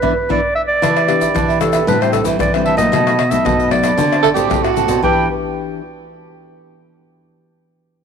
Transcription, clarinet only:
0.00 0.30 B4 medium
0.31 0.55 D5 medium
0.55 0.61 E5 medium
0.67 1.56 D5 loud
1.60 1.85 A4 medium
1.88 2.03 B4 loud
2.01 2.12 C5 medium
2.12 2.25 A4 medium
2.41 2.52 D5 medium
2.66 2.77 E5 medium
2.77 3.32 D#5 loud
3.30 3.47 E5 medium
3.46 3.71 D#5 loud
3.71 4.73 D5 medium
5.04 5.28 G5 medium

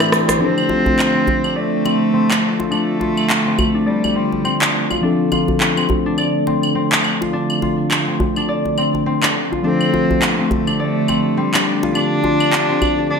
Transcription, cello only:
0.40 1.58 C4 loud
1.56 2.70 A3 medium
2.71 3.88 A3 medium
3.87 4.74 G3 medium
9.66 10.25 C4 medium
10.24 10.80 A3 medium
10.81 11.39 A3 medium
11.37 11.95 G3 medium
11.96 13.07 D4 loud
13.10 13.20 D4 medium

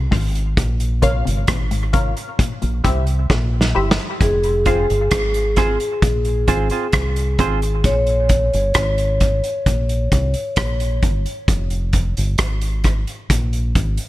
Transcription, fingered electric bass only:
0.12 0.54 G#1 loud
0.58 1.22 A#1 medium
1.27 1.47 G1 medium
1.49 2.13 G#1 medium
2.63 2.83 A#1 medium
2.85 3.27 C2 medium
3.30 3.72 A#1 medium
3.76 3.97 G1 medium
4.21 4.86 F1 loud
4.90 5.11 G1 medium
5.12 5.76 G#1 medium
6.03 6.45 A#1 medium
6.48 6.70 G#1 medium
6.94 7.36 C2 medium
7.39 7.81 G#1 medium
7.85 8.49 A#1 medium
8.54 8.74 G1 medium
8.76 9.40 G#1 medium
9.67 10.09 A#1 medium
10.12 10.34 C2 medium
10.57 11.00 A#1 medium
11.03 11.25 G1 medium
11.48 12.13 F1 loud
12.18 12.38 G1 medium
12.40 13.04 G#1 medium
13.30 13.72 A#1 medium
13.76 13.97 G#1 medium

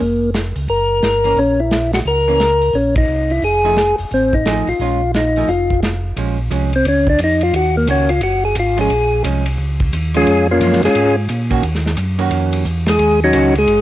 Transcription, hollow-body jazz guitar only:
1.24 1.36 E3 medium
1.24 1.36 A#3 medium
1.24 1.36 C#4 medium
2.28 2.39 E3 medium
2.28 2.39 A#3 medium
2.28 2.39 C#4 medium
3.64 3.76 F3 medium
3.64 3.76 A3 medium
3.64 3.76 D#4 medium
3.64 3.76 G#4 medium
4.46 4.66 F3 medium
4.46 4.66 A3 medium
4.46 4.66 D#4 medium
4.46 4.66 G#4 medium
4.81 5.00 G#3 medium
4.81 5.00 C#4 medium
4.81 5.00 F4 medium
5.37 5.48 F3 medium
5.37 5.48 A3 medium
5.37 5.48 D#4 soft
5.37 5.48 G#4 medium
6.17 6.37 F3 medium
6.17 6.37 G#3 soft
6.17 6.37 C#4 medium
6.51 6.70 F3 soft
6.51 6.71 G#3 medium
6.51 6.71 C#4 medium
7.88 8.07 D#3 medium
7.88 8.08 A#3 medium
7.88 8.08 C#4 soft
7.88 8.08 F#4 medium
8.77 8.88 F3 medium
8.77 8.89 G#3 medium
8.77 8.89 C#4 medium
9.24 9.44 F3 soft
9.24 9.44 G#3 medium
9.24 9.44 C#4 medium
10.15 10.26 F3 medium
10.15 10.26 G#3 medium
10.15 10.26 C#4 medium
10.62 10.81 F3 medium
10.62 10.81 G#3 medium
10.62 10.82 C#4 medium
11.50 11.62 D#3 medium
11.50 11.62 A#3 medium
11.50 11.62 C#4 medium
11.50 11.62 F#4 medium
12.18 12.63 D#3 medium
12.18 12.63 A#3 medium
12.18 12.63 C#4 medium
12.18 12.63 F#4 medium
13.33 13.53 D#3 medium
13.33 13.53 A#3 medium
13.33 13.53 C#4 medium
13.33 13.54 F#4 medium

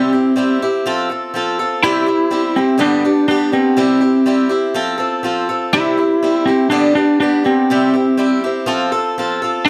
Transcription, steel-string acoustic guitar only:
0.00 0.12 C3 medium
0.00 0.13 G3 medium
0.00 0.13 C4 medium
0.00 0.12 E4 medium
0.00 0.11 G4 medium
0.12 0.35 C4 soft
0.12 0.36 E4 soft
0.12 0.37 G4 medium
0.36 0.61 G3 medium
0.36 0.61 C4 medium
0.36 0.62 E4 medium
0.36 0.61 G4 medium
0.62 0.85 C4 medium
0.62 0.86 E4 medium
0.62 0.86 G4 medium
0.86 1.10 F3 medium
0.86 1.10 C4 loud
0.86 1.10 F4 medium
0.86 1.08 A4 loud
1.10 1.34 C4 soft
1.10 1.35 F4 medium
1.10 1.34 A4 medium
1.34 1.58 F3 medium
1.34 1.59 C4 medium
1.34 1.58 F4 medium
1.34 1.58 A4 medium
1.59 1.83 C4 soft
1.59 1.84 F4 medium
1.59 1.83 A4 medium
1.83 2.07 C3 medium
1.83 2.08 G3 medium
1.83 2.07 C4 medium
1.83 2.07 E4 loud
1.83 2.05 G4 medium
2.06 2.30 C4 soft
2.06 2.31 E4 medium
2.06 2.31 G4 medium
2.31 2.56 G3 medium
2.31 2.56 C4 medium
2.31 2.56 E4 medium
2.31 2.55 G4 medium
2.56 2.78 C4 soft
2.56 2.79 E4 medium
2.56 2.78 G4 medium
2.78 3.04 G2 medium
2.78 3.04 D3 medium
2.78 3.04 G3 medium
2.78 3.04 B3 medium
2.78 3.04 D4 medium
2.78 3.03 G4 medium
3.04 3.27 G3 soft
3.04 3.27 B3 soft
3.04 3.29 D4 medium
3.04 3.29 G4 medium
3.28 3.53 G3 medium
3.28 3.52 B3 medium
3.28 3.52 D4 medium
3.28 3.51 G4 medium
3.52 3.76 G3 soft
3.52 3.77 B3 medium
3.52 3.77 D4 medium
3.52 3.77 G4 soft
3.76 4.02 C3 medium
3.76 4.02 G3 medium
3.76 4.02 C4 medium
3.76 4.00 E4 medium
3.76 3.99 G4 medium
4.01 4.25 C4 soft
4.01 4.26 E4 soft
4.01 4.26 G4 medium
4.26 4.51 G3 medium
4.26 4.50 C4 medium
4.26 4.49 E4 medium
4.26 4.48 G4 medium
4.49 4.74 C4 medium
4.49 4.75 E4 medium
4.49 4.75 G4 medium
4.74 5.00 F3 medium
4.74 4.99 C4 loud
4.74 4.98 F4 medium
4.74 4.97 A4 medium
4.98 5.23 C4 medium
4.98 5.23 F4 medium
4.98 5.23 A4 medium
5.23 5.48 F3 medium
5.23 5.49 C4 medium
5.23 5.48 F4 medium
5.23 5.48 A4 medium
5.49 5.72 C4 medium
5.49 5.73 F4 soft
5.49 5.73 A4 medium
5.73 5.98 C3 medium
5.73 5.98 G3 medium
5.73 5.98 C4 medium
5.73 5.97 E4 medium
5.73 5.96 G4 medium
5.97 6.21 C4 soft
5.97 6.23 E4 soft
5.97 6.22 G4 medium
6.23 6.47 G3 medium
6.23 6.47 C4 medium
6.23 6.47 E4 medium
6.23 6.46 G4 medium
6.47 6.71 C4 medium
6.47 6.71 E4 medium
6.47 6.71 G4 medium
6.70 6.95 G2 medium
6.70 6.96 D3 medium
6.70 6.96 G3 medium
6.70 6.95 B3 medium
6.70 6.95 D4 loud
6.70 6.94 G4 loud
6.95 7.19 G3 soft
6.95 7.21 B3 soft
6.95 7.21 D4 medium
6.95 7.20 G4 medium
7.20 7.45 G3 medium
7.20 7.44 B3 medium
7.20 7.44 D4 medium
7.20 7.43 G4 medium
7.44 7.70 G3 soft
7.44 7.70 B3 soft
7.44 7.69 D4 soft
7.44 7.69 G4 medium
7.70 7.94 C3 medium
7.70 7.95 G3 medium
7.70 7.94 C4 medium
7.70 7.94 E4 medium
7.70 7.92 G4 medium
7.93 8.17 C4 soft
7.93 8.17 E4 soft
7.93 8.18 G4 medium
8.17 8.42 G3 medium
8.17 8.43 C4 medium
8.17 8.43 E4 medium
8.17 8.43 G4 medium
8.44 8.66 C4 medium
8.44 8.67 E4 medium
8.44 8.67 G4 medium
8.66 8.91 F3 loud
8.66 8.92 C4 medium
8.66 8.92 F4 loud
8.66 8.91 A4 medium
8.92 9.17 C4 medium
8.92 9.17 F4 medium
8.92 9.16 A4 medium
9.18 9.41 F3 medium
9.18 9.42 C4 medium
9.18 9.42 F4 medium
9.18 9.41 A4 medium
9.42 9.67 C4 medium
9.42 9.67 F4 medium
9.42 9.66 A4 medium

